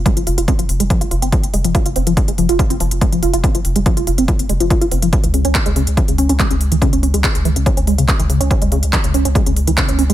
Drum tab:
HH |xxoxxxoxxxoxxxox|xxoxxxoxxxoxxxox|xxoxxxoxxxoxxxox|xxoxxxoxxxoxxxox|
CP |----------------|----------------|----------------|----x-------x---|
BD |o---o---o---o---|o---o---o---o---|o---o---o---o---|o---o---o---o---|

HH |xxoxxxoxxxoxxxox|xxoxxxoxxxoxxxox|
CP |----x-------x---|----x-------x---|
BD |o---o---o---o---|o---o---o---o---|